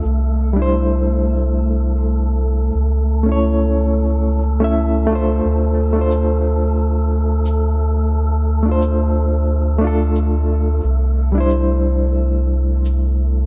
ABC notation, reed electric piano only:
X:1
M:4/4
L:1/16
Q:"Swing 16ths" 1/4=89
K:Dm
V:1 name="Reed electric piano"
z3 [G,DEc]12- [G,DEc] | z3 [A,^CE^c]6- [A,CEc] z [A,CEe]3 [A,DF=c]2- | [A,DFc]3 [A,DFc]12- [A,DFc]- | [A,DFc]3 [A,DFc]6- [A,DFc] [A,DFA]6 |
z3 [G,DEc]12- [G,DEc] |]